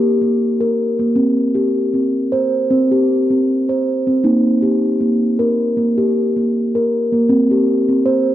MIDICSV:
0, 0, Header, 1, 2, 480
1, 0, Start_track
1, 0, Key_signature, -3, "minor"
1, 0, Tempo, 765306
1, 734, Time_signature, 4, 2, 24, 8
1, 5235, End_track
2, 0, Start_track
2, 0, Title_t, "Steel tongue drum"
2, 0, Program_c, 0, 114
2, 0, Note_on_c, 0, 63, 69
2, 0, Note_on_c, 0, 67, 74
2, 135, Note_on_c, 0, 58, 64
2, 142, Note_off_c, 0, 67, 0
2, 380, Note_on_c, 0, 70, 66
2, 382, Note_off_c, 0, 58, 0
2, 621, Note_on_c, 0, 58, 68
2, 625, Note_off_c, 0, 70, 0
2, 709, Note_off_c, 0, 63, 0
2, 724, Note_on_c, 0, 60, 78
2, 731, Note_off_c, 0, 58, 0
2, 971, Note_off_c, 0, 60, 0
2, 971, Note_on_c, 0, 67, 68
2, 1215, Note_off_c, 0, 67, 0
2, 1215, Note_on_c, 0, 60, 58
2, 1456, Note_on_c, 0, 72, 67
2, 1457, Note_off_c, 0, 60, 0
2, 1698, Note_off_c, 0, 72, 0
2, 1698, Note_on_c, 0, 60, 82
2, 1830, Note_on_c, 0, 67, 66
2, 1833, Note_off_c, 0, 60, 0
2, 2072, Note_off_c, 0, 67, 0
2, 2072, Note_on_c, 0, 60, 58
2, 2313, Note_off_c, 0, 60, 0
2, 2314, Note_on_c, 0, 72, 63
2, 2552, Note_on_c, 0, 60, 66
2, 2555, Note_off_c, 0, 72, 0
2, 2658, Note_on_c, 0, 58, 74
2, 2659, Note_off_c, 0, 60, 0
2, 2661, Note_on_c, 0, 63, 74
2, 2899, Note_off_c, 0, 58, 0
2, 2899, Note_on_c, 0, 67, 66
2, 3139, Note_on_c, 0, 58, 65
2, 3140, Note_off_c, 0, 67, 0
2, 3379, Note_off_c, 0, 58, 0
2, 3381, Note_on_c, 0, 70, 67
2, 3619, Note_on_c, 0, 58, 67
2, 3620, Note_off_c, 0, 70, 0
2, 3749, Note_on_c, 0, 67, 65
2, 3753, Note_off_c, 0, 58, 0
2, 3990, Note_off_c, 0, 67, 0
2, 3993, Note_on_c, 0, 58, 61
2, 4231, Note_off_c, 0, 58, 0
2, 4236, Note_on_c, 0, 70, 62
2, 4468, Note_on_c, 0, 58, 66
2, 4471, Note_off_c, 0, 70, 0
2, 4549, Note_off_c, 0, 63, 0
2, 4574, Note_off_c, 0, 58, 0
2, 4575, Note_on_c, 0, 60, 82
2, 4708, Note_off_c, 0, 60, 0
2, 4712, Note_on_c, 0, 67, 64
2, 4946, Note_on_c, 0, 60, 66
2, 4948, Note_off_c, 0, 67, 0
2, 5051, Note_off_c, 0, 60, 0
2, 5052, Note_on_c, 0, 72, 69
2, 5235, Note_off_c, 0, 72, 0
2, 5235, End_track
0, 0, End_of_file